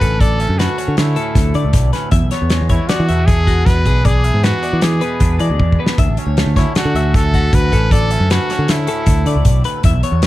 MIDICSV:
0, 0, Header, 1, 6, 480
1, 0, Start_track
1, 0, Tempo, 385356
1, 254, Time_signature, 5, 2, 24, 8
1, 12789, End_track
2, 0, Start_track
2, 0, Title_t, "Clean electric guitar"
2, 0, Program_c, 0, 27
2, 20, Note_on_c, 0, 69, 73
2, 257, Note_off_c, 0, 69, 0
2, 263, Note_on_c, 0, 74, 92
2, 498, Note_off_c, 0, 74, 0
2, 498, Note_on_c, 0, 76, 73
2, 735, Note_off_c, 0, 76, 0
2, 742, Note_on_c, 0, 71, 78
2, 973, Note_off_c, 0, 71, 0
2, 973, Note_on_c, 0, 73, 74
2, 1450, Note_on_c, 0, 69, 77
2, 1451, Note_off_c, 0, 73, 0
2, 1929, Note_off_c, 0, 69, 0
2, 1933, Note_on_c, 0, 74, 80
2, 2401, Note_off_c, 0, 74, 0
2, 2406, Note_on_c, 0, 71, 69
2, 2631, Note_off_c, 0, 71, 0
2, 2636, Note_on_c, 0, 76, 90
2, 2879, Note_off_c, 0, 76, 0
2, 2884, Note_on_c, 0, 73, 76
2, 3344, Note_off_c, 0, 73, 0
2, 3359, Note_on_c, 0, 73, 79
2, 3602, Note_off_c, 0, 73, 0
2, 3607, Note_on_c, 0, 74, 77
2, 3839, Note_off_c, 0, 74, 0
2, 3844, Note_on_c, 0, 76, 81
2, 4323, Note_on_c, 0, 66, 78
2, 4326, Note_off_c, 0, 76, 0
2, 4806, Note_off_c, 0, 66, 0
2, 4810, Note_on_c, 0, 68, 72
2, 5047, Note_on_c, 0, 74, 90
2, 5050, Note_off_c, 0, 68, 0
2, 5283, Note_off_c, 0, 74, 0
2, 5283, Note_on_c, 0, 76, 75
2, 5526, Note_on_c, 0, 71, 83
2, 5527, Note_off_c, 0, 76, 0
2, 5767, Note_on_c, 0, 74, 69
2, 5768, Note_off_c, 0, 71, 0
2, 6247, Note_on_c, 0, 71, 80
2, 6249, Note_off_c, 0, 74, 0
2, 6730, Note_off_c, 0, 71, 0
2, 6731, Note_on_c, 0, 74, 74
2, 7213, Note_off_c, 0, 74, 0
2, 7224, Note_on_c, 0, 71, 71
2, 7459, Note_off_c, 0, 71, 0
2, 7460, Note_on_c, 0, 76, 88
2, 7703, Note_off_c, 0, 76, 0
2, 7703, Note_on_c, 0, 73, 71
2, 8165, Note_off_c, 0, 73, 0
2, 8180, Note_on_c, 0, 73, 72
2, 8425, Note_off_c, 0, 73, 0
2, 8425, Note_on_c, 0, 74, 81
2, 8661, Note_off_c, 0, 74, 0
2, 8668, Note_on_c, 0, 76, 79
2, 9143, Note_off_c, 0, 76, 0
2, 9152, Note_on_c, 0, 66, 76
2, 9626, Note_off_c, 0, 66, 0
2, 9629, Note_on_c, 0, 69, 80
2, 9864, Note_off_c, 0, 69, 0
2, 9869, Note_on_c, 0, 74, 87
2, 10103, Note_off_c, 0, 74, 0
2, 10103, Note_on_c, 0, 76, 77
2, 10341, Note_off_c, 0, 76, 0
2, 10350, Note_on_c, 0, 71, 78
2, 10597, Note_off_c, 0, 71, 0
2, 10597, Note_on_c, 0, 73, 74
2, 11067, Note_on_c, 0, 69, 80
2, 11068, Note_off_c, 0, 73, 0
2, 11543, Note_off_c, 0, 69, 0
2, 11544, Note_on_c, 0, 74, 80
2, 12017, Note_off_c, 0, 74, 0
2, 12022, Note_on_c, 0, 71, 78
2, 12260, Note_off_c, 0, 71, 0
2, 12269, Note_on_c, 0, 76, 94
2, 12495, Note_off_c, 0, 76, 0
2, 12500, Note_on_c, 0, 73, 83
2, 12789, Note_off_c, 0, 73, 0
2, 12789, End_track
3, 0, Start_track
3, 0, Title_t, "Trumpet"
3, 0, Program_c, 1, 56
3, 0, Note_on_c, 1, 71, 100
3, 250, Note_on_c, 1, 69, 111
3, 269, Note_off_c, 1, 71, 0
3, 728, Note_on_c, 1, 66, 90
3, 746, Note_off_c, 1, 69, 0
3, 1209, Note_off_c, 1, 66, 0
3, 1224, Note_on_c, 1, 64, 85
3, 2126, Note_off_c, 1, 64, 0
3, 3361, Note_on_c, 1, 64, 84
3, 3587, Note_on_c, 1, 66, 97
3, 3606, Note_off_c, 1, 64, 0
3, 4059, Note_on_c, 1, 68, 99
3, 4078, Note_off_c, 1, 66, 0
3, 4557, Note_on_c, 1, 71, 104
3, 4576, Note_off_c, 1, 68, 0
3, 5053, Note_on_c, 1, 68, 103
3, 5072, Note_off_c, 1, 71, 0
3, 5527, Note_on_c, 1, 66, 96
3, 5546, Note_off_c, 1, 68, 0
3, 6013, Note_on_c, 1, 68, 83
3, 6032, Note_off_c, 1, 66, 0
3, 6974, Note_off_c, 1, 68, 0
3, 8185, Note_on_c, 1, 64, 80
3, 8404, Note_off_c, 1, 64, 0
3, 8417, Note_on_c, 1, 66, 93
3, 8914, Note_on_c, 1, 69, 103
3, 8932, Note_off_c, 1, 66, 0
3, 9401, Note_on_c, 1, 71, 109
3, 9419, Note_off_c, 1, 69, 0
3, 9861, Note_on_c, 1, 69, 105
3, 9880, Note_off_c, 1, 71, 0
3, 10354, Note_on_c, 1, 66, 92
3, 10373, Note_off_c, 1, 69, 0
3, 10844, Note_on_c, 1, 64, 84
3, 10863, Note_off_c, 1, 66, 0
3, 11792, Note_off_c, 1, 64, 0
3, 12789, End_track
4, 0, Start_track
4, 0, Title_t, "Clean electric guitar"
4, 0, Program_c, 2, 27
4, 0, Note_on_c, 2, 38, 72
4, 0, Note_on_c, 2, 45, 61
4, 0, Note_on_c, 2, 50, 57
4, 0, Note_on_c, 2, 57, 58
4, 0, Note_on_c, 2, 66, 63
4, 26, Note_on_c, 2, 61, 55
4, 219, Note_off_c, 2, 57, 0
4, 231, Note_off_c, 2, 61, 0
4, 234, Note_off_c, 2, 38, 0
4, 249, Note_on_c, 2, 38, 74
4, 254, Note_off_c, 2, 45, 0
4, 498, Note_on_c, 2, 61, 58
4, 736, Note_on_c, 2, 57, 64
4, 961, Note_off_c, 2, 50, 0
4, 969, Note_off_c, 2, 61, 0
4, 976, Note_on_c, 2, 50, 65
4, 984, Note_on_c, 2, 61, 57
4, 1213, Note_off_c, 2, 57, 0
4, 1231, Note_on_c, 2, 57, 65
4, 1457, Note_off_c, 2, 61, 0
4, 1464, Note_on_c, 2, 45, 65
4, 1477, Note_on_c, 2, 61, 56
4, 1703, Note_off_c, 2, 61, 0
4, 1925, Note_off_c, 2, 57, 0
4, 1940, Note_on_c, 2, 57, 56
4, 2160, Note_off_c, 2, 38, 0
4, 2175, Note_on_c, 2, 38, 77
4, 2419, Note_on_c, 2, 61, 63
4, 2625, Note_off_c, 2, 57, 0
4, 2625, Note_off_c, 2, 61, 0
4, 2646, Note_off_c, 2, 38, 0
4, 2651, Note_on_c, 2, 40, 76
4, 2656, Note_off_c, 2, 45, 0
4, 2689, Note_off_c, 2, 66, 0
4, 2899, Note_on_c, 2, 59, 57
4, 3145, Note_on_c, 2, 56, 60
4, 3370, Note_off_c, 2, 50, 0
4, 3383, Note_on_c, 2, 52, 65
4, 3393, Note_off_c, 2, 59, 0
4, 3398, Note_on_c, 2, 59, 59
4, 3629, Note_off_c, 2, 56, 0
4, 3634, Note_on_c, 2, 56, 60
4, 3841, Note_off_c, 2, 59, 0
4, 3846, Note_on_c, 2, 57, 55
4, 3852, Note_on_c, 2, 47, 63
4, 3977, Note_off_c, 2, 57, 0
4, 3977, Note_on_c, 2, 59, 54
4, 4110, Note_on_c, 2, 62, 67
4, 4341, Note_off_c, 2, 56, 0
4, 4362, Note_on_c, 2, 56, 57
4, 4564, Note_off_c, 2, 40, 0
4, 4578, Note_on_c, 2, 40, 77
4, 4813, Note_off_c, 2, 59, 0
4, 4829, Note_on_c, 2, 59, 60
4, 5022, Note_off_c, 2, 47, 0
4, 5025, Note_off_c, 2, 40, 0
4, 5030, Note_off_c, 2, 59, 0
4, 5037, Note_off_c, 2, 56, 0
4, 5047, Note_on_c, 2, 40, 80
4, 5295, Note_on_c, 2, 59, 56
4, 5519, Note_on_c, 2, 56, 56
4, 5754, Note_off_c, 2, 52, 0
4, 5756, Note_off_c, 2, 59, 0
4, 5759, Note_on_c, 2, 52, 58
4, 5770, Note_on_c, 2, 59, 58
4, 5995, Note_off_c, 2, 56, 0
4, 6010, Note_on_c, 2, 56, 56
4, 6227, Note_off_c, 2, 59, 0
4, 6235, Note_on_c, 2, 47, 59
4, 6244, Note_on_c, 2, 59, 61
4, 6473, Note_off_c, 2, 62, 0
4, 6478, Note_on_c, 2, 62, 68
4, 6698, Note_off_c, 2, 56, 0
4, 6713, Note_on_c, 2, 56, 59
4, 6945, Note_off_c, 2, 40, 0
4, 6960, Note_on_c, 2, 40, 76
4, 7199, Note_off_c, 2, 59, 0
4, 7214, Note_on_c, 2, 59, 61
4, 7415, Note_off_c, 2, 56, 0
4, 7418, Note_off_c, 2, 40, 0
4, 7418, Note_off_c, 2, 47, 0
4, 7425, Note_off_c, 2, 59, 0
4, 7442, Note_on_c, 2, 38, 72
4, 7480, Note_off_c, 2, 52, 0
4, 7710, Note_on_c, 2, 61, 54
4, 7939, Note_on_c, 2, 57, 56
4, 8191, Note_on_c, 2, 50, 65
4, 8193, Note_off_c, 2, 61, 0
4, 8198, Note_on_c, 2, 61, 57
4, 8417, Note_off_c, 2, 57, 0
4, 8422, Note_on_c, 2, 57, 61
4, 8663, Note_on_c, 2, 45, 62
4, 8666, Note_off_c, 2, 61, 0
4, 8671, Note_on_c, 2, 61, 58
4, 8905, Note_off_c, 2, 62, 0
4, 8910, Note_on_c, 2, 66, 72
4, 9140, Note_off_c, 2, 57, 0
4, 9153, Note_on_c, 2, 57, 57
4, 9361, Note_off_c, 2, 38, 0
4, 9376, Note_on_c, 2, 38, 80
4, 9608, Note_off_c, 2, 61, 0
4, 9623, Note_on_c, 2, 61, 60
4, 9832, Note_off_c, 2, 61, 0
4, 9838, Note_off_c, 2, 57, 0
4, 9839, Note_off_c, 2, 38, 0
4, 9854, Note_on_c, 2, 38, 78
4, 9862, Note_off_c, 2, 45, 0
4, 10105, Note_on_c, 2, 61, 57
4, 10339, Note_on_c, 2, 57, 60
4, 10564, Note_off_c, 2, 50, 0
4, 10569, Note_off_c, 2, 61, 0
4, 10579, Note_on_c, 2, 50, 63
4, 10586, Note_on_c, 2, 61, 61
4, 10797, Note_off_c, 2, 57, 0
4, 10812, Note_on_c, 2, 57, 61
4, 11025, Note_off_c, 2, 61, 0
4, 11034, Note_on_c, 2, 45, 62
4, 11042, Note_on_c, 2, 61, 62
4, 11290, Note_off_c, 2, 61, 0
4, 11513, Note_off_c, 2, 57, 0
4, 11528, Note_on_c, 2, 57, 59
4, 12003, Note_off_c, 2, 38, 0
4, 12018, Note_on_c, 2, 38, 63
4, 12224, Note_off_c, 2, 57, 0
4, 12247, Note_off_c, 2, 45, 0
4, 12257, Note_off_c, 2, 38, 0
4, 12262, Note_on_c, 2, 40, 78
4, 12299, Note_off_c, 2, 66, 0
4, 12499, Note_on_c, 2, 59, 62
4, 12748, Note_on_c, 2, 56, 58
4, 12789, Note_off_c, 2, 40, 0
4, 12789, Note_off_c, 2, 50, 0
4, 12789, Note_off_c, 2, 56, 0
4, 12789, Note_off_c, 2, 59, 0
4, 12789, End_track
5, 0, Start_track
5, 0, Title_t, "Picked electric bass"
5, 0, Program_c, 3, 34
5, 19, Note_on_c, 3, 33, 77
5, 565, Note_off_c, 3, 33, 0
5, 613, Note_on_c, 3, 42, 77
5, 830, Note_off_c, 3, 42, 0
5, 1097, Note_on_c, 3, 50, 86
5, 1203, Note_off_c, 3, 50, 0
5, 1218, Note_on_c, 3, 50, 86
5, 1432, Note_off_c, 3, 50, 0
5, 1686, Note_on_c, 3, 38, 104
5, 1905, Note_off_c, 3, 38, 0
5, 1931, Note_on_c, 3, 50, 91
5, 2039, Note_off_c, 3, 50, 0
5, 2051, Note_on_c, 3, 37, 91
5, 2159, Note_off_c, 3, 37, 0
5, 2165, Note_on_c, 3, 35, 94
5, 2384, Note_off_c, 3, 35, 0
5, 2639, Note_on_c, 3, 40, 100
5, 2752, Note_off_c, 3, 40, 0
5, 2765, Note_on_c, 3, 35, 83
5, 2875, Note_off_c, 3, 35, 0
5, 3012, Note_on_c, 3, 40, 77
5, 3228, Note_off_c, 3, 40, 0
5, 3256, Note_on_c, 3, 40, 95
5, 3470, Note_off_c, 3, 40, 0
5, 3733, Note_on_c, 3, 52, 83
5, 3840, Note_off_c, 3, 52, 0
5, 3855, Note_on_c, 3, 40, 88
5, 4522, Note_off_c, 3, 40, 0
5, 4562, Note_on_c, 3, 40, 93
5, 4783, Note_off_c, 3, 40, 0
5, 4805, Note_on_c, 3, 35, 88
5, 5358, Note_off_c, 3, 35, 0
5, 5407, Note_on_c, 3, 44, 79
5, 5626, Note_off_c, 3, 44, 0
5, 5894, Note_on_c, 3, 52, 81
5, 6001, Note_off_c, 3, 52, 0
5, 6009, Note_on_c, 3, 52, 80
5, 6228, Note_off_c, 3, 52, 0
5, 6486, Note_on_c, 3, 40, 100
5, 6706, Note_off_c, 3, 40, 0
5, 6724, Note_on_c, 3, 52, 89
5, 6837, Note_off_c, 3, 52, 0
5, 6851, Note_on_c, 3, 38, 89
5, 6961, Note_off_c, 3, 38, 0
5, 6972, Note_on_c, 3, 40, 91
5, 7190, Note_off_c, 3, 40, 0
5, 7453, Note_on_c, 3, 38, 88
5, 7562, Note_off_c, 3, 38, 0
5, 7571, Note_on_c, 3, 33, 81
5, 7681, Note_off_c, 3, 33, 0
5, 7805, Note_on_c, 3, 38, 79
5, 8027, Note_off_c, 3, 38, 0
5, 8050, Note_on_c, 3, 38, 96
5, 8270, Note_off_c, 3, 38, 0
5, 8537, Note_on_c, 3, 50, 84
5, 8645, Note_off_c, 3, 50, 0
5, 8652, Note_on_c, 3, 38, 84
5, 9326, Note_off_c, 3, 38, 0
5, 9381, Note_on_c, 3, 38, 91
5, 9597, Note_off_c, 3, 38, 0
5, 9621, Note_on_c, 3, 33, 92
5, 10170, Note_off_c, 3, 33, 0
5, 10217, Note_on_c, 3, 42, 82
5, 10435, Note_off_c, 3, 42, 0
5, 10697, Note_on_c, 3, 50, 83
5, 10807, Note_off_c, 3, 50, 0
5, 10828, Note_on_c, 3, 50, 80
5, 11041, Note_off_c, 3, 50, 0
5, 11299, Note_on_c, 3, 38, 116
5, 11516, Note_off_c, 3, 38, 0
5, 11535, Note_on_c, 3, 50, 94
5, 11645, Note_off_c, 3, 50, 0
5, 11655, Note_on_c, 3, 37, 98
5, 11765, Note_off_c, 3, 37, 0
5, 11773, Note_on_c, 3, 35, 93
5, 11993, Note_off_c, 3, 35, 0
5, 12260, Note_on_c, 3, 40, 90
5, 12358, Note_off_c, 3, 40, 0
5, 12366, Note_on_c, 3, 35, 84
5, 12480, Note_off_c, 3, 35, 0
5, 12605, Note_on_c, 3, 40, 80
5, 12789, Note_off_c, 3, 40, 0
5, 12789, End_track
6, 0, Start_track
6, 0, Title_t, "Drums"
6, 17, Note_on_c, 9, 36, 69
6, 19, Note_on_c, 9, 42, 67
6, 142, Note_off_c, 9, 36, 0
6, 143, Note_off_c, 9, 42, 0
6, 256, Note_on_c, 9, 36, 98
6, 257, Note_on_c, 9, 42, 77
6, 380, Note_off_c, 9, 36, 0
6, 382, Note_off_c, 9, 42, 0
6, 493, Note_on_c, 9, 42, 65
6, 618, Note_off_c, 9, 42, 0
6, 738, Note_on_c, 9, 42, 76
6, 748, Note_on_c, 9, 38, 91
6, 862, Note_off_c, 9, 42, 0
6, 872, Note_off_c, 9, 38, 0
6, 976, Note_on_c, 9, 42, 68
6, 1100, Note_off_c, 9, 42, 0
6, 1209, Note_on_c, 9, 42, 89
6, 1219, Note_on_c, 9, 38, 115
6, 1334, Note_off_c, 9, 42, 0
6, 1344, Note_off_c, 9, 38, 0
6, 1446, Note_on_c, 9, 42, 62
6, 1571, Note_off_c, 9, 42, 0
6, 1686, Note_on_c, 9, 36, 97
6, 1688, Note_on_c, 9, 42, 100
6, 1698, Note_on_c, 9, 38, 31
6, 1810, Note_off_c, 9, 36, 0
6, 1813, Note_off_c, 9, 42, 0
6, 1823, Note_off_c, 9, 38, 0
6, 1921, Note_on_c, 9, 42, 59
6, 2046, Note_off_c, 9, 42, 0
6, 2157, Note_on_c, 9, 42, 98
6, 2162, Note_on_c, 9, 36, 104
6, 2167, Note_on_c, 9, 38, 34
6, 2282, Note_off_c, 9, 42, 0
6, 2287, Note_off_c, 9, 36, 0
6, 2292, Note_off_c, 9, 38, 0
6, 2405, Note_on_c, 9, 42, 75
6, 2415, Note_on_c, 9, 38, 36
6, 2530, Note_off_c, 9, 42, 0
6, 2540, Note_off_c, 9, 38, 0
6, 2633, Note_on_c, 9, 42, 91
6, 2641, Note_on_c, 9, 36, 92
6, 2757, Note_off_c, 9, 42, 0
6, 2765, Note_off_c, 9, 36, 0
6, 2875, Note_on_c, 9, 42, 69
6, 2885, Note_on_c, 9, 38, 31
6, 3000, Note_off_c, 9, 42, 0
6, 3010, Note_off_c, 9, 38, 0
6, 3109, Note_on_c, 9, 42, 80
6, 3119, Note_on_c, 9, 38, 90
6, 3234, Note_off_c, 9, 42, 0
6, 3244, Note_off_c, 9, 38, 0
6, 3355, Note_on_c, 9, 42, 68
6, 3360, Note_on_c, 9, 36, 77
6, 3480, Note_off_c, 9, 42, 0
6, 3484, Note_off_c, 9, 36, 0
6, 3596, Note_on_c, 9, 42, 86
6, 3606, Note_on_c, 9, 38, 105
6, 3720, Note_off_c, 9, 42, 0
6, 3730, Note_off_c, 9, 38, 0
6, 3843, Note_on_c, 9, 42, 58
6, 3968, Note_off_c, 9, 42, 0
6, 4081, Note_on_c, 9, 42, 84
6, 4083, Note_on_c, 9, 36, 113
6, 4205, Note_off_c, 9, 42, 0
6, 4208, Note_off_c, 9, 36, 0
6, 4326, Note_on_c, 9, 36, 59
6, 4331, Note_on_c, 9, 42, 57
6, 4451, Note_off_c, 9, 36, 0
6, 4455, Note_off_c, 9, 42, 0
6, 4565, Note_on_c, 9, 36, 102
6, 4570, Note_on_c, 9, 42, 84
6, 4580, Note_on_c, 9, 38, 31
6, 4689, Note_off_c, 9, 36, 0
6, 4694, Note_off_c, 9, 42, 0
6, 4704, Note_off_c, 9, 38, 0
6, 4802, Note_on_c, 9, 42, 69
6, 4803, Note_on_c, 9, 36, 72
6, 4927, Note_off_c, 9, 42, 0
6, 4928, Note_off_c, 9, 36, 0
6, 5042, Note_on_c, 9, 42, 78
6, 5045, Note_on_c, 9, 36, 101
6, 5167, Note_off_c, 9, 42, 0
6, 5169, Note_off_c, 9, 36, 0
6, 5282, Note_on_c, 9, 42, 67
6, 5407, Note_off_c, 9, 42, 0
6, 5524, Note_on_c, 9, 42, 82
6, 5534, Note_on_c, 9, 38, 93
6, 5648, Note_off_c, 9, 42, 0
6, 5658, Note_off_c, 9, 38, 0
6, 5762, Note_on_c, 9, 42, 74
6, 5887, Note_off_c, 9, 42, 0
6, 5997, Note_on_c, 9, 42, 95
6, 6007, Note_on_c, 9, 38, 109
6, 6122, Note_off_c, 9, 42, 0
6, 6132, Note_off_c, 9, 38, 0
6, 6243, Note_on_c, 9, 42, 58
6, 6367, Note_off_c, 9, 42, 0
6, 6479, Note_on_c, 9, 42, 100
6, 6485, Note_on_c, 9, 36, 102
6, 6604, Note_off_c, 9, 42, 0
6, 6610, Note_off_c, 9, 36, 0
6, 6720, Note_on_c, 9, 42, 65
6, 6844, Note_off_c, 9, 42, 0
6, 6970, Note_on_c, 9, 36, 101
6, 7094, Note_off_c, 9, 36, 0
6, 7130, Note_on_c, 9, 36, 68
6, 7255, Note_off_c, 9, 36, 0
6, 7305, Note_on_c, 9, 38, 99
6, 7430, Note_off_c, 9, 38, 0
6, 7450, Note_on_c, 9, 42, 83
6, 7452, Note_on_c, 9, 36, 99
6, 7575, Note_off_c, 9, 42, 0
6, 7577, Note_off_c, 9, 36, 0
6, 7687, Note_on_c, 9, 42, 70
6, 7812, Note_off_c, 9, 42, 0
6, 7935, Note_on_c, 9, 42, 81
6, 7945, Note_on_c, 9, 38, 96
6, 8059, Note_off_c, 9, 42, 0
6, 8069, Note_off_c, 9, 38, 0
6, 8175, Note_on_c, 9, 36, 68
6, 8176, Note_on_c, 9, 42, 73
6, 8186, Note_on_c, 9, 38, 35
6, 8299, Note_off_c, 9, 36, 0
6, 8301, Note_off_c, 9, 42, 0
6, 8311, Note_off_c, 9, 38, 0
6, 8412, Note_on_c, 9, 42, 88
6, 8422, Note_on_c, 9, 38, 107
6, 8537, Note_off_c, 9, 42, 0
6, 8547, Note_off_c, 9, 38, 0
6, 8663, Note_on_c, 9, 42, 60
6, 8787, Note_off_c, 9, 42, 0
6, 8898, Note_on_c, 9, 36, 108
6, 8904, Note_on_c, 9, 42, 94
6, 8914, Note_on_c, 9, 38, 32
6, 9022, Note_off_c, 9, 36, 0
6, 9029, Note_off_c, 9, 42, 0
6, 9039, Note_off_c, 9, 38, 0
6, 9138, Note_on_c, 9, 36, 66
6, 9140, Note_on_c, 9, 42, 57
6, 9263, Note_off_c, 9, 36, 0
6, 9265, Note_off_c, 9, 42, 0
6, 9378, Note_on_c, 9, 36, 112
6, 9379, Note_on_c, 9, 42, 91
6, 9502, Note_off_c, 9, 36, 0
6, 9503, Note_off_c, 9, 42, 0
6, 9618, Note_on_c, 9, 36, 74
6, 9624, Note_on_c, 9, 42, 72
6, 9742, Note_off_c, 9, 36, 0
6, 9749, Note_off_c, 9, 42, 0
6, 9856, Note_on_c, 9, 36, 101
6, 9861, Note_on_c, 9, 42, 88
6, 9981, Note_off_c, 9, 36, 0
6, 9986, Note_off_c, 9, 42, 0
6, 10096, Note_on_c, 9, 42, 69
6, 10221, Note_off_c, 9, 42, 0
6, 10341, Note_on_c, 9, 42, 85
6, 10351, Note_on_c, 9, 38, 107
6, 10465, Note_off_c, 9, 42, 0
6, 10475, Note_off_c, 9, 38, 0
6, 10586, Note_on_c, 9, 42, 72
6, 10596, Note_on_c, 9, 38, 36
6, 10711, Note_off_c, 9, 42, 0
6, 10721, Note_off_c, 9, 38, 0
6, 10815, Note_on_c, 9, 42, 102
6, 10825, Note_on_c, 9, 38, 109
6, 10940, Note_off_c, 9, 42, 0
6, 10950, Note_off_c, 9, 38, 0
6, 11053, Note_on_c, 9, 42, 64
6, 11178, Note_off_c, 9, 42, 0
6, 11288, Note_on_c, 9, 42, 95
6, 11294, Note_on_c, 9, 36, 109
6, 11413, Note_off_c, 9, 42, 0
6, 11419, Note_off_c, 9, 36, 0
6, 11536, Note_on_c, 9, 42, 66
6, 11660, Note_off_c, 9, 42, 0
6, 11768, Note_on_c, 9, 42, 94
6, 11773, Note_on_c, 9, 36, 106
6, 11892, Note_off_c, 9, 42, 0
6, 11897, Note_off_c, 9, 36, 0
6, 12011, Note_on_c, 9, 42, 73
6, 12136, Note_off_c, 9, 42, 0
6, 12250, Note_on_c, 9, 42, 90
6, 12255, Note_on_c, 9, 36, 95
6, 12374, Note_off_c, 9, 42, 0
6, 12380, Note_off_c, 9, 36, 0
6, 12495, Note_on_c, 9, 42, 67
6, 12619, Note_off_c, 9, 42, 0
6, 12730, Note_on_c, 9, 42, 78
6, 12740, Note_on_c, 9, 38, 99
6, 12789, Note_off_c, 9, 38, 0
6, 12789, Note_off_c, 9, 42, 0
6, 12789, End_track
0, 0, End_of_file